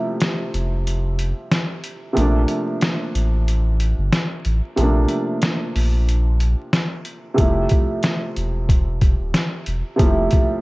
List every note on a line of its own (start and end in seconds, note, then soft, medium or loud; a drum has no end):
0.00 2.11 C3 medium
0.00 2.12 F3 medium
0.00 2.13 G3 medium
0.00 2.14 A3 medium
0.00 2.14 E4 medium
0.20 snare loud
0.20 closed hi-hat medium
0.54 1.33 F1 medium
0.54 closed hi-hat medium
0.87 closed hi-hat medium
1.19 closed hi-hat medium
1.52 snare loud
1.52 closed hi-hat loud
1.84 closed hi-hat medium
2.13 4.72 C3 medium
2.13 4.73 F3 medium
2.13 4.73 A3 medium
2.13 closed hi-hat loud
2.17 2.45 A#1 loud
2.17 4.74 A#3 medium
2.17 4.75 D4 medium
2.48 closed hi-hat medium
2.81 snare loud
2.81 closed hi-hat medium
3.15 3.94 A1 medium
3.15 closed hi-hat medium
3.48 closed hi-hat medium
3.80 closed hi-hat medium
3.98 4.11 G1 medium
4.12 snare loud
4.12 closed hi-hat loud
4.45 4.61 A1 medium
4.45 closed hi-hat medium
4.76 5.06 A#1 loud
4.76 7.33 C3 medium
4.76 7.34 F3 medium
4.76 7.35 A3 medium
4.76 closed hi-hat loud
4.81 7.36 A#3 medium
4.81 7.37 D4 medium
5.09 closed hi-hat medium
5.42 snare loud
5.42 closed hi-hat medium
5.76 6.55 A#1 medium
5.76 open hi-hat medium
6.09 closed hi-hat medium
6.40 closed hi-hat medium
6.73 snare loud
6.73 closed hi-hat loud
7.05 closed hi-hat medium
7.34 9.93 C3 medium
7.34 9.94 F3 medium
7.34 9.95 G3 medium
7.34 closed hi-hat loud
7.38 7.67 F1 loud
7.38 9.96 A3 medium
7.38 9.97 E4 medium
7.38 kick loud
7.69 kick medium
7.69 closed hi-hat medium
8.03 snare loud
8.03 closed hi-hat medium
8.36 9.16 E1 medium
8.36 closed hi-hat medium
8.69 kick medium
8.69 closed hi-hat medium
9.01 kick medium
9.01 closed hi-hat medium
9.20 9.32 D1 medium
9.34 snare loud
9.34 closed hi-hat loud
9.66 9.82 E1 medium
9.66 closed hi-hat medium
9.96 10.28 F1 loud
9.96 10.61 C3 medium
9.96 10.61 F3 medium
9.96 10.61 G3 medium
9.96 kick loud
9.96 closed hi-hat loud
10.01 10.61 A3 medium
10.01 10.61 E4 medium
10.30 kick medium
10.30 closed hi-hat medium